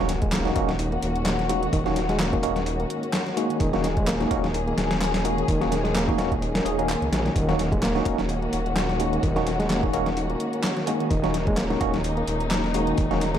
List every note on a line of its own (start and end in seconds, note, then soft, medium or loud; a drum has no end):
0.00 0.51 D#1 loud
0.00 13.39 D#3 medium
0.00 0.11 A#3 loud
0.00 13.39 A#3 medium
0.00 0.11 C#4 medium
0.00 13.39 C#4 medium
0.00 0.11 D#4 medium
0.00 0.11 F#4 loud
0.00 3.60 F#4 medium
0.00 impact medium
0.09 snare soft
0.09 closed hi-hat medium
0.22 0.32 G#3 loud
0.22 kick medium
0.22 closed hi-hat soft
0.32 0.45 A#3 loud
0.32 snare loud
0.32 clap loud
0.32 closed hi-hat soft
0.32 closed hi-hat medium
0.45 0.54 A#3 medium
0.45 0.54 C#4 medium
0.45 0.54 D#4 medium
0.45 0.54 F#4 loud
0.45 snare soft
0.45 closed hi-hat soft
0.56 0.98 D#1 medium
0.56 0.70 A#3 medium
0.56 0.70 C#4 medium
0.56 0.70 D#4 medium
0.56 0.70 F#4 medium
0.56 kick medium
0.56 closed hi-hat medium
0.69 0.79 D#3 medium
0.69 snare medium
0.69 closed hi-hat soft
0.79 0.90 D#4 medium
0.79 closed hi-hat medium
0.79 closed hi-hat soft
0.92 1.01 A#3 medium
0.92 closed hi-hat soft
1.03 1.69 D#1 medium
1.03 closed hi-hat medium
1.16 closed hi-hat soft
1.26 snare loud
1.26 clap loud
1.26 closed hi-hat soft
1.26 closed hi-hat medium
1.39 snare soft
1.39 closed hi-hat soft
1.49 1.62 G#3 medium
1.49 1.71 A#3 medium
1.49 1.71 C#4 medium
1.49 1.71 D#4 medium
1.49 1.71 F#4 loud
1.49 closed hi-hat medium
1.62 1.72 D#3 medium
1.62 closed hi-hat soft
1.73 2.39 D#1 loud
1.73 1.84 D#3 medium
1.73 kick loud
1.73 closed hi-hat medium
1.73 closed hi-hat soft
1.86 1.98 A#3 loud
1.86 1.98 C#4 medium
1.86 1.98 D#4 medium
1.86 1.98 F#4 loud
1.86 snare soft
1.86 closed hi-hat soft
1.96 snare soft
1.96 closed hi-hat medium
2.09 2.19 G#3 loud
2.09 snare soft
2.09 closed hi-hat soft
2.19 2.32 A#3 loud
2.19 snare loud
2.19 clap loud
2.19 closed hi-hat medium
2.19 closed hi-hat soft
2.33 2.42 A#3 medium
2.33 2.42 C#4 medium
2.33 2.42 D#4 medium
2.33 2.42 F#4 loud
2.33 kick loud
2.33 closed hi-hat soft
2.43 2.86 D#1 medium
2.43 2.58 A#3 medium
2.43 2.58 C#4 medium
2.43 2.58 D#4 medium
2.43 2.58 F#4 loud
2.43 closed hi-hat medium
2.56 2.66 D#3 medium
2.56 snare medium
2.56 closed hi-hat soft
2.66 2.78 D#4 medium
2.66 closed hi-hat medium
2.66 closed hi-hat soft
2.80 2.89 A#3 medium
2.80 closed hi-hat soft
2.90 closed hi-hat medium
3.03 closed hi-hat soft
3.13 snare loud
3.13 clap loud
3.13 closed hi-hat soft
3.13 open hi-hat medium
3.27 snare soft
3.27 closed hi-hat soft
3.37 3.50 G#3 medium
3.37 3.59 A#3 medium
3.37 3.59 C#4 medium
3.37 3.59 D#4 medium
3.37 3.59 F#4 loud
3.37 closed hi-hat medium
3.50 3.59 D#3 medium
3.50 closed hi-hat soft
3.60 4.26 D#1 loud
3.60 3.72 D#3 medium
3.60 7.34 G#4 medium
3.60 kick loud
3.60 closed hi-hat medium
3.60 closed hi-hat soft
3.73 3.86 A#3 loud
3.73 3.86 C#4 medium
3.73 3.86 D#4 loud
3.73 3.86 F#4 loud
3.73 snare soft
3.73 closed hi-hat soft
3.84 snare soft
3.84 closed hi-hat medium
3.97 4.07 G#3 loud
3.97 kick loud
3.97 closed hi-hat soft
4.07 4.20 A#3 loud
4.07 snare loud
4.07 clap loud
4.07 closed hi-hat medium
4.07 closed hi-hat soft
4.20 4.29 A#3 medium
4.20 4.29 C#4 medium
4.20 4.29 D#4 medium
4.20 4.29 F#4 loud
4.20 snare soft
4.20 closed hi-hat soft
4.31 4.73 D#1 medium
4.31 4.45 A#3 medium
4.31 4.45 C#4 medium
4.31 4.45 D#4 medium
4.31 4.45 F#4 loud
4.31 kick loud
4.31 closed hi-hat medium
4.44 4.54 D#3 medium
4.44 snare medium
4.44 closed hi-hat soft
4.54 4.66 D#4 medium
4.54 closed hi-hat medium
4.54 closed hi-hat soft
4.67 4.76 A#3 medium
4.67 closed hi-hat soft
4.78 5.44 D#1 medium
4.78 snare loud
4.78 closed hi-hat medium
4.91 snare loud
4.91 closed hi-hat medium
4.91 closed hi-hat soft
5.01 snare loud
5.01 clap loud
5.01 closed hi-hat medium
5.01 closed hi-hat soft
5.14 snare loud
5.14 closed hi-hat medium
5.14 closed hi-hat soft
5.25 5.37 G#3 medium
5.25 5.47 A#3 medium
5.25 5.47 C#4 medium
5.25 5.46 D#4 medium
5.25 5.47 F#4 loud
5.25 closed hi-hat medium
5.38 5.47 D#3 medium
5.38 closed hi-hat soft
5.48 6.14 D#1 medium
5.48 5.59 D#3 medium
5.48 kick loud
5.48 closed hi-hat medium
5.48 closed hi-hat soft
5.61 5.74 A#3 loud
5.61 5.74 C#4 medium
5.61 5.73 D#4 medium
5.61 5.74 F#4 loud
5.61 snare soft
5.61 closed hi-hat soft
5.72 snare soft
5.72 closed hi-hat medium
5.84 5.94 G#3 medium
5.84 snare soft
5.84 closed hi-hat soft
5.95 6.07 A#3 loud
5.95 snare loud
5.95 clap loud
5.95 closed hi-hat medium
5.95 closed hi-hat soft
6.08 6.17 A#3 medium
6.08 6.17 C#4 medium
6.08 6.17 D#4 medium
6.08 6.17 F#4 loud
6.08 kick medium
6.08 closed hi-hat soft
6.18 6.61 D#1 medium
6.18 6.33 A#3 medium
6.18 6.33 C#4 medium
6.18 6.33 D#4 medium
6.18 6.33 F#4 loud
6.18 snare loud
6.18 closed hi-hat medium
6.31 6.41 D#3 medium
6.31 kick medium
6.31 closed hi-hat soft
6.42 6.53 D#4 medium
6.42 closed hi-hat medium
6.42 closed hi-hat soft
6.55 6.64 A#3 medium
6.55 snare loud
6.55 closed hi-hat medium
6.55 closed hi-hat soft
6.65 6.96 D#1 medium
6.65 6.76 A#3 medium
6.65 6.76 C#4 medium
6.65 6.76 D#4 medium
6.65 6.76 G#4 loud
6.65 closed hi-hat medium
6.78 6.91 A#3 medium
6.78 6.91 C#4 medium
6.78 6.91 D#4 medium
6.78 6.91 F#4 medium
6.78 closed hi-hat soft
6.89 clap loud
6.89 closed hi-hat medium
6.89 closed hi-hat soft
7.02 7.10 C#2 medium
7.02 closed hi-hat soft
7.12 7.30 A#1 medium
7.12 7.25 G#3 medium
7.12 snare loud
7.12 closed hi-hat medium
7.25 7.34 D#3 medium
7.25 snare soft
7.25 closed hi-hat soft
7.35 8.02 D#1 loud
7.35 7.47 D#3 medium
7.35 11.10 F#4 medium
7.35 kick loud
7.35 closed hi-hat medium
7.35 closed hi-hat soft
7.48 7.61 A#3 loud
7.48 7.61 C#4 medium
7.48 7.61 D#4 medium
7.48 7.61 F#4 loud
7.48 snare soft
7.48 closed hi-hat soft
7.59 snare soft
7.59 closed hi-hat medium
7.72 7.82 G#3 loud
7.72 kick loud
7.72 closed hi-hat soft
7.82 7.95 A#3 loud
7.82 snare loud
7.82 clap loud
7.82 closed hi-hat medium
7.82 closed hi-hat soft
7.95 8.04 A#3 medium
7.95 8.04 C#4 medium
7.95 8.04 D#4 medium
7.95 8.04 F#4 loud
7.95 snare soft
7.95 closed hi-hat soft
8.05 8.48 D#1 medium
8.05 8.20 A#3 medium
8.05 8.20 C#4 medium
8.05 8.20 D#4 medium
8.05 8.21 F#4 medium
8.05 kick medium
8.05 closed hi-hat medium
8.18 8.29 D#3 medium
8.18 snare medium
8.18 closed hi-hat soft
8.29 8.41 D#4 medium
8.29 closed hi-hat medium
8.29 closed hi-hat soft
8.42 8.52 A#3 medium
8.42 closed hi-hat soft
8.53 9.19 D#1 medium
8.53 closed hi-hat medium
8.66 closed hi-hat soft
8.76 snare loud
8.76 clap loud
8.76 closed hi-hat medium
8.76 closed hi-hat soft
8.89 snare soft
8.89 closed hi-hat soft
9.00 9.12 G#3 medium
9.00 9.22 A#3 medium
9.00 9.22 C#4 medium
9.00 9.22 D#4 medium
9.00 9.22 F#4 loud
9.00 closed hi-hat medium
9.13 9.22 D#3 medium
9.13 closed hi-hat soft
9.23 9.89 D#1 loud
9.23 9.35 D#3 medium
9.23 kick loud
9.23 closed hi-hat medium
9.23 closed hi-hat soft
9.36 9.49 A#3 loud
9.36 9.49 C#4 medium
9.36 9.49 D#4 medium
9.36 9.49 F#4 loud
9.36 snare soft
9.36 closed hi-hat soft
9.47 snare soft
9.47 closed hi-hat medium
9.60 9.70 G#3 loud
9.60 snare soft
9.60 closed hi-hat soft
9.70 9.82 A#3 loud
9.70 snare loud
9.70 clap loud
9.70 closed hi-hat medium
9.70 closed hi-hat soft
9.83 9.92 A#3 medium
9.83 9.92 C#4 medium
9.83 9.92 D#4 medium
9.83 9.92 F#4 loud
9.83 kick loud
9.83 closed hi-hat soft
9.93 10.36 D#1 medium
9.93 10.08 A#3 medium
9.93 10.08 C#4 medium
9.93 10.08 D#4 medium
9.93 10.08 F#4 loud
9.93 closed hi-hat medium
10.06 10.16 D#3 medium
10.06 snare medium
10.06 closed hi-hat soft
10.17 10.28 D#4 medium
10.17 closed hi-hat soft
10.17 closed hi-hat medium
10.30 10.39 A#3 medium
10.30 closed hi-hat soft
10.40 closed hi-hat medium
10.53 closed hi-hat soft
10.64 snare loud
10.64 clap loud
10.64 closed hi-hat soft
10.64 open hi-hat medium
10.77 snare soft
10.77 closed hi-hat soft
10.87 11.00 G#3 medium
10.87 11.09 A#3 medium
10.87 11.09 C#4 medium
10.87 11.09 D#4 medium
10.87 11.09 F#4 loud
10.87 closed hi-hat medium
11.00 11.10 D#3 medium
11.00 closed hi-hat soft
11.10 11.76 D#1 loud
11.10 11.22 D#3 medium
11.10 13.39 D#4 medium
11.10 kick loud
11.10 closed hi-hat medium
11.10 closed hi-hat soft
11.23 11.36 A#3 loud
11.23 11.36 C#4 loud
11.23 11.36 D#4 medium
11.23 11.36 F#4 loud
11.23 snare soft
11.23 closed hi-hat soft
11.34 snare soft
11.34 closed hi-hat medium
11.47 11.57 G#3 loud
11.47 kick loud
11.47 closed hi-hat soft
11.57 11.70 A#3 loud
11.57 snare loud
11.57 clap loud
11.57 closed hi-hat medium
11.57 closed hi-hat soft
11.70 11.79 A#3 loud
11.70 11.79 C#4 medium
11.70 11.79 D#4 medium
11.70 11.79 F#4 loud
11.70 snare soft
11.70 closed hi-hat soft
11.81 12.23 D#1 medium
11.81 11.96 A#3 medium
11.81 11.95 C#4 medium
11.81 11.96 D#4 medium
11.81 11.95 F#4 loud
11.81 kick loud
11.81 closed hi-hat medium
11.94 12.04 D#3 medium
11.94 snare medium
11.94 closed hi-hat soft
12.04 12.16 D#4 medium
12.04 closed hi-hat soft
12.04 closed hi-hat medium
12.17 12.26 A#3 medium
12.17 closed hi-hat soft
12.27 12.94 D#1 medium
12.27 closed hi-hat medium
12.40 closed hi-hat soft
12.51 snare loud
12.51 clap loud
12.51 closed hi-hat soft
12.51 closed hi-hat medium
12.64 snare soft
12.64 closed hi-hat soft
12.74 12.87 G#3 medium
12.74 12.96 A#3 loud
12.74 12.96 C#4 medium
12.74 12.96 D#4 medium
12.74 12.96 F#4 loud
12.74 closed hi-hat medium
12.87 12.97 D#3 medium
12.87 closed hi-hat soft
12.97 13.39 D#1 loud
12.97 13.09 D#3 medium
12.97 kick loud
12.97 closed hi-hat soft
12.97 closed hi-hat medium
13.11 13.23 A#3 loud
13.11 13.23 C#4 medium
13.11 13.23 D#4 medium
13.11 13.23 F#4 loud
13.11 snare soft
13.11 closed hi-hat soft
13.21 snare soft
13.21 closed hi-hat medium
13.34 13.39 G#3 loud
13.34 snare soft
13.34 closed hi-hat soft